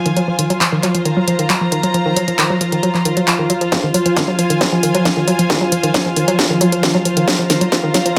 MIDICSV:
0, 0, Header, 1, 5, 480
1, 0, Start_track
1, 0, Key_signature, -4, "minor"
1, 0, Tempo, 444444
1, 178, Time_signature, 4, 2, 24, 8
1, 8844, End_track
2, 0, Start_track
2, 0, Title_t, "String section"
2, 0, Program_c, 0, 48
2, 0, Note_on_c, 0, 65, 93
2, 0, Note_on_c, 0, 72, 78
2, 0, Note_on_c, 0, 77, 77
2, 0, Note_on_c, 0, 80, 84
2, 1101, Note_on_c, 0, 82, 83
2, 1246, Note_off_c, 0, 80, 0
2, 4019, Note_off_c, 0, 82, 0
2, 4370, Note_on_c, 0, 80, 76
2, 7780, Note_on_c, 0, 82, 73
2, 7924, Note_off_c, 0, 80, 0
2, 8844, Note_off_c, 0, 65, 0
2, 8844, Note_off_c, 0, 72, 0
2, 8844, Note_off_c, 0, 77, 0
2, 8844, Note_off_c, 0, 82, 0
2, 8844, End_track
3, 0, Start_track
3, 0, Title_t, "Ambient pad"
3, 0, Program_c, 1, 92
3, 0, Note_on_c, 1, 53, 71
3, 0, Note_on_c, 1, 65, 73
3, 4004, Note_off_c, 1, 53, 0
3, 4004, Note_off_c, 1, 65, 0
3, 4017, Note_on_c, 1, 53, 74
3, 4017, Note_on_c, 1, 65, 74
3, 8844, Note_off_c, 1, 53, 0
3, 8844, Note_off_c, 1, 65, 0
3, 8844, End_track
4, 0, Start_track
4, 0, Title_t, "Synth arpeggio sound"
4, 0, Program_c, 2, 84
4, 61, Note_on_c, 2, 51, 77
4, 130, Note_off_c, 2, 51, 0
4, 178, Note_on_c, 2, 54, 100
4, 251, Note_off_c, 2, 54, 0
4, 301, Note_on_c, 2, 53, 75
4, 343, Note_off_c, 2, 53, 0
4, 418, Note_on_c, 2, 51, 73
4, 491, Note_off_c, 2, 51, 0
4, 541, Note_on_c, 2, 54, 101
4, 610, Note_off_c, 2, 54, 0
4, 658, Note_on_c, 2, 53, 86
4, 702, Note_off_c, 2, 53, 0
4, 781, Note_on_c, 2, 51, 73
4, 850, Note_off_c, 2, 51, 0
4, 898, Note_on_c, 2, 54, 102
4, 971, Note_off_c, 2, 54, 0
4, 1021, Note_on_c, 2, 53, 74
4, 1063, Note_off_c, 2, 53, 0
4, 1139, Note_on_c, 2, 51, 80
4, 1211, Note_off_c, 2, 51, 0
4, 1261, Note_on_c, 2, 54, 102
4, 1330, Note_off_c, 2, 54, 0
4, 1378, Note_on_c, 2, 53, 77
4, 1422, Note_off_c, 2, 53, 0
4, 1502, Note_on_c, 2, 51, 76
4, 1570, Note_off_c, 2, 51, 0
4, 1618, Note_on_c, 2, 54, 98
4, 1691, Note_off_c, 2, 54, 0
4, 1741, Note_on_c, 2, 53, 75
4, 1783, Note_off_c, 2, 53, 0
4, 1859, Note_on_c, 2, 51, 77
4, 1931, Note_off_c, 2, 51, 0
4, 1982, Note_on_c, 2, 54, 101
4, 2051, Note_off_c, 2, 54, 0
4, 2098, Note_on_c, 2, 53, 84
4, 2142, Note_off_c, 2, 53, 0
4, 2221, Note_on_c, 2, 51, 75
4, 2290, Note_off_c, 2, 51, 0
4, 2339, Note_on_c, 2, 54, 100
4, 2411, Note_off_c, 2, 54, 0
4, 2462, Note_on_c, 2, 53, 73
4, 2503, Note_off_c, 2, 53, 0
4, 2578, Note_on_c, 2, 51, 84
4, 2651, Note_off_c, 2, 51, 0
4, 2702, Note_on_c, 2, 54, 101
4, 2771, Note_off_c, 2, 54, 0
4, 2817, Note_on_c, 2, 53, 75
4, 2861, Note_off_c, 2, 53, 0
4, 2940, Note_on_c, 2, 51, 75
4, 3010, Note_off_c, 2, 51, 0
4, 3057, Note_on_c, 2, 54, 100
4, 3130, Note_off_c, 2, 54, 0
4, 3181, Note_on_c, 2, 53, 72
4, 3223, Note_off_c, 2, 53, 0
4, 3298, Note_on_c, 2, 51, 77
4, 3371, Note_off_c, 2, 51, 0
4, 3421, Note_on_c, 2, 54, 103
4, 3490, Note_off_c, 2, 54, 0
4, 3538, Note_on_c, 2, 53, 81
4, 3582, Note_off_c, 2, 53, 0
4, 3661, Note_on_c, 2, 51, 74
4, 3730, Note_off_c, 2, 51, 0
4, 3778, Note_on_c, 2, 54, 97
4, 3851, Note_off_c, 2, 54, 0
4, 3901, Note_on_c, 2, 53, 80
4, 3942, Note_off_c, 2, 53, 0
4, 4018, Note_on_c, 2, 53, 82
4, 4062, Note_off_c, 2, 53, 0
4, 4141, Note_on_c, 2, 51, 75
4, 4210, Note_off_c, 2, 51, 0
4, 4258, Note_on_c, 2, 54, 102
4, 4331, Note_off_c, 2, 54, 0
4, 4381, Note_on_c, 2, 53, 75
4, 4422, Note_off_c, 2, 53, 0
4, 4498, Note_on_c, 2, 51, 83
4, 4571, Note_off_c, 2, 51, 0
4, 4622, Note_on_c, 2, 54, 99
4, 4691, Note_off_c, 2, 54, 0
4, 4738, Note_on_c, 2, 53, 78
4, 4782, Note_off_c, 2, 53, 0
4, 4861, Note_on_c, 2, 51, 75
4, 4930, Note_off_c, 2, 51, 0
4, 4978, Note_on_c, 2, 54, 101
4, 5051, Note_off_c, 2, 54, 0
4, 5102, Note_on_c, 2, 53, 77
4, 5143, Note_off_c, 2, 53, 0
4, 5218, Note_on_c, 2, 51, 77
4, 5291, Note_off_c, 2, 51, 0
4, 5341, Note_on_c, 2, 54, 104
4, 5410, Note_off_c, 2, 54, 0
4, 5457, Note_on_c, 2, 53, 81
4, 5502, Note_off_c, 2, 53, 0
4, 5581, Note_on_c, 2, 51, 73
4, 5650, Note_off_c, 2, 51, 0
4, 5698, Note_on_c, 2, 54, 100
4, 5771, Note_off_c, 2, 54, 0
4, 5820, Note_on_c, 2, 53, 77
4, 5862, Note_off_c, 2, 53, 0
4, 5937, Note_on_c, 2, 51, 85
4, 6010, Note_off_c, 2, 51, 0
4, 6060, Note_on_c, 2, 54, 98
4, 6130, Note_off_c, 2, 54, 0
4, 6177, Note_on_c, 2, 53, 76
4, 6221, Note_off_c, 2, 53, 0
4, 6300, Note_on_c, 2, 51, 75
4, 6370, Note_off_c, 2, 51, 0
4, 6418, Note_on_c, 2, 54, 104
4, 6491, Note_off_c, 2, 54, 0
4, 6541, Note_on_c, 2, 53, 74
4, 6582, Note_off_c, 2, 53, 0
4, 6658, Note_on_c, 2, 51, 76
4, 6731, Note_off_c, 2, 51, 0
4, 6780, Note_on_c, 2, 54, 102
4, 6850, Note_off_c, 2, 54, 0
4, 6898, Note_on_c, 2, 53, 83
4, 6942, Note_off_c, 2, 53, 0
4, 7021, Note_on_c, 2, 51, 74
4, 7090, Note_off_c, 2, 51, 0
4, 7137, Note_on_c, 2, 54, 103
4, 7210, Note_off_c, 2, 54, 0
4, 7260, Note_on_c, 2, 53, 78
4, 7302, Note_off_c, 2, 53, 0
4, 7378, Note_on_c, 2, 51, 82
4, 7451, Note_off_c, 2, 51, 0
4, 7500, Note_on_c, 2, 54, 99
4, 7570, Note_off_c, 2, 54, 0
4, 7618, Note_on_c, 2, 53, 77
4, 7662, Note_off_c, 2, 53, 0
4, 7741, Note_on_c, 2, 51, 78
4, 7810, Note_off_c, 2, 51, 0
4, 7857, Note_on_c, 2, 54, 106
4, 7930, Note_off_c, 2, 54, 0
4, 7980, Note_on_c, 2, 53, 75
4, 8022, Note_off_c, 2, 53, 0
4, 8097, Note_on_c, 2, 51, 76
4, 8170, Note_off_c, 2, 51, 0
4, 8220, Note_on_c, 2, 54, 103
4, 8290, Note_off_c, 2, 54, 0
4, 8337, Note_on_c, 2, 53, 87
4, 8381, Note_off_c, 2, 53, 0
4, 8460, Note_on_c, 2, 51, 77
4, 8530, Note_off_c, 2, 51, 0
4, 8577, Note_on_c, 2, 54, 106
4, 8650, Note_off_c, 2, 54, 0
4, 8700, Note_on_c, 2, 53, 75
4, 8742, Note_off_c, 2, 53, 0
4, 8844, End_track
5, 0, Start_track
5, 0, Title_t, "Drums"
5, 61, Note_on_c, 9, 42, 65
5, 169, Note_off_c, 9, 42, 0
5, 178, Note_on_c, 9, 42, 63
5, 286, Note_off_c, 9, 42, 0
5, 418, Note_on_c, 9, 42, 91
5, 526, Note_off_c, 9, 42, 0
5, 542, Note_on_c, 9, 42, 65
5, 650, Note_off_c, 9, 42, 0
5, 659, Note_on_c, 9, 39, 110
5, 659, Note_on_c, 9, 42, 65
5, 767, Note_off_c, 9, 39, 0
5, 767, Note_off_c, 9, 42, 0
5, 899, Note_on_c, 9, 39, 34
5, 899, Note_on_c, 9, 42, 88
5, 1007, Note_off_c, 9, 39, 0
5, 1007, Note_off_c, 9, 42, 0
5, 1022, Note_on_c, 9, 42, 68
5, 1130, Note_off_c, 9, 42, 0
5, 1139, Note_on_c, 9, 42, 66
5, 1247, Note_off_c, 9, 42, 0
5, 1378, Note_on_c, 9, 42, 93
5, 1486, Note_off_c, 9, 42, 0
5, 1501, Note_on_c, 9, 42, 67
5, 1609, Note_off_c, 9, 42, 0
5, 1618, Note_on_c, 9, 39, 114
5, 1618, Note_on_c, 9, 42, 65
5, 1726, Note_off_c, 9, 39, 0
5, 1726, Note_off_c, 9, 42, 0
5, 1857, Note_on_c, 9, 42, 92
5, 1965, Note_off_c, 9, 42, 0
5, 1981, Note_on_c, 9, 42, 68
5, 2089, Note_off_c, 9, 42, 0
5, 2098, Note_on_c, 9, 42, 61
5, 2206, Note_off_c, 9, 42, 0
5, 2338, Note_on_c, 9, 42, 88
5, 2446, Note_off_c, 9, 42, 0
5, 2461, Note_on_c, 9, 42, 64
5, 2569, Note_off_c, 9, 42, 0
5, 2578, Note_on_c, 9, 39, 108
5, 2578, Note_on_c, 9, 42, 62
5, 2686, Note_off_c, 9, 39, 0
5, 2686, Note_off_c, 9, 42, 0
5, 2818, Note_on_c, 9, 42, 88
5, 2926, Note_off_c, 9, 42, 0
5, 2941, Note_on_c, 9, 42, 64
5, 3049, Note_off_c, 9, 42, 0
5, 3058, Note_on_c, 9, 42, 63
5, 3166, Note_off_c, 9, 42, 0
5, 3181, Note_on_c, 9, 39, 34
5, 3289, Note_off_c, 9, 39, 0
5, 3297, Note_on_c, 9, 42, 91
5, 3405, Note_off_c, 9, 42, 0
5, 3421, Note_on_c, 9, 42, 64
5, 3529, Note_off_c, 9, 42, 0
5, 3538, Note_on_c, 9, 39, 113
5, 3538, Note_on_c, 9, 42, 63
5, 3646, Note_off_c, 9, 39, 0
5, 3646, Note_off_c, 9, 42, 0
5, 3778, Note_on_c, 9, 42, 89
5, 3886, Note_off_c, 9, 42, 0
5, 3901, Note_on_c, 9, 42, 61
5, 4009, Note_off_c, 9, 42, 0
5, 4018, Note_on_c, 9, 36, 117
5, 4018, Note_on_c, 9, 38, 48
5, 4018, Note_on_c, 9, 42, 67
5, 4126, Note_off_c, 9, 36, 0
5, 4126, Note_off_c, 9, 38, 0
5, 4126, Note_off_c, 9, 42, 0
5, 4258, Note_on_c, 9, 46, 102
5, 4366, Note_off_c, 9, 46, 0
5, 4381, Note_on_c, 9, 42, 68
5, 4489, Note_off_c, 9, 42, 0
5, 4498, Note_on_c, 9, 36, 116
5, 4498, Note_on_c, 9, 38, 50
5, 4498, Note_on_c, 9, 42, 67
5, 4606, Note_off_c, 9, 36, 0
5, 4606, Note_off_c, 9, 38, 0
5, 4606, Note_off_c, 9, 42, 0
5, 4738, Note_on_c, 9, 46, 88
5, 4846, Note_off_c, 9, 46, 0
5, 4861, Note_on_c, 9, 42, 69
5, 4969, Note_off_c, 9, 42, 0
5, 4978, Note_on_c, 9, 36, 119
5, 4978, Note_on_c, 9, 38, 53
5, 4978, Note_on_c, 9, 42, 70
5, 5086, Note_off_c, 9, 36, 0
5, 5086, Note_off_c, 9, 38, 0
5, 5086, Note_off_c, 9, 42, 0
5, 5218, Note_on_c, 9, 46, 103
5, 5326, Note_off_c, 9, 46, 0
5, 5341, Note_on_c, 9, 42, 69
5, 5449, Note_off_c, 9, 42, 0
5, 5458, Note_on_c, 9, 36, 117
5, 5458, Note_on_c, 9, 38, 57
5, 5458, Note_on_c, 9, 42, 68
5, 5566, Note_off_c, 9, 36, 0
5, 5566, Note_off_c, 9, 38, 0
5, 5566, Note_off_c, 9, 42, 0
5, 5698, Note_on_c, 9, 46, 89
5, 5806, Note_off_c, 9, 46, 0
5, 5821, Note_on_c, 9, 42, 68
5, 5929, Note_off_c, 9, 42, 0
5, 5938, Note_on_c, 9, 36, 125
5, 5938, Note_on_c, 9, 38, 56
5, 5938, Note_on_c, 9, 42, 68
5, 6046, Note_off_c, 9, 36, 0
5, 6046, Note_off_c, 9, 38, 0
5, 6046, Note_off_c, 9, 42, 0
5, 6178, Note_on_c, 9, 46, 106
5, 6286, Note_off_c, 9, 46, 0
5, 6301, Note_on_c, 9, 42, 67
5, 6409, Note_off_c, 9, 42, 0
5, 6418, Note_on_c, 9, 36, 123
5, 6418, Note_on_c, 9, 38, 61
5, 6418, Note_on_c, 9, 42, 67
5, 6526, Note_off_c, 9, 36, 0
5, 6526, Note_off_c, 9, 38, 0
5, 6526, Note_off_c, 9, 42, 0
5, 6658, Note_on_c, 9, 46, 94
5, 6766, Note_off_c, 9, 46, 0
5, 6782, Note_on_c, 9, 42, 72
5, 6890, Note_off_c, 9, 42, 0
5, 6898, Note_on_c, 9, 36, 122
5, 6898, Note_on_c, 9, 38, 67
5, 6898, Note_on_c, 9, 42, 68
5, 7006, Note_off_c, 9, 36, 0
5, 7006, Note_off_c, 9, 38, 0
5, 7006, Note_off_c, 9, 42, 0
5, 7138, Note_on_c, 9, 46, 107
5, 7246, Note_off_c, 9, 46, 0
5, 7261, Note_on_c, 9, 42, 70
5, 7369, Note_off_c, 9, 42, 0
5, 7378, Note_on_c, 9, 36, 121
5, 7379, Note_on_c, 9, 38, 70
5, 7379, Note_on_c, 9, 42, 70
5, 7486, Note_off_c, 9, 36, 0
5, 7487, Note_off_c, 9, 38, 0
5, 7487, Note_off_c, 9, 42, 0
5, 7618, Note_on_c, 9, 46, 93
5, 7726, Note_off_c, 9, 46, 0
5, 7742, Note_on_c, 9, 42, 70
5, 7850, Note_off_c, 9, 42, 0
5, 7858, Note_on_c, 9, 36, 124
5, 7858, Note_on_c, 9, 38, 76
5, 7858, Note_on_c, 9, 42, 66
5, 7966, Note_off_c, 9, 36, 0
5, 7966, Note_off_c, 9, 38, 0
5, 7966, Note_off_c, 9, 42, 0
5, 8099, Note_on_c, 9, 38, 78
5, 8099, Note_on_c, 9, 46, 106
5, 8207, Note_off_c, 9, 38, 0
5, 8207, Note_off_c, 9, 46, 0
5, 8222, Note_on_c, 9, 42, 66
5, 8330, Note_off_c, 9, 42, 0
5, 8338, Note_on_c, 9, 36, 124
5, 8339, Note_on_c, 9, 38, 77
5, 8339, Note_on_c, 9, 42, 67
5, 8446, Note_off_c, 9, 36, 0
5, 8447, Note_off_c, 9, 38, 0
5, 8447, Note_off_c, 9, 42, 0
5, 8579, Note_on_c, 9, 38, 80
5, 8579, Note_on_c, 9, 46, 95
5, 8687, Note_off_c, 9, 38, 0
5, 8687, Note_off_c, 9, 46, 0
5, 8701, Note_on_c, 9, 42, 68
5, 8809, Note_off_c, 9, 42, 0
5, 8844, End_track
0, 0, End_of_file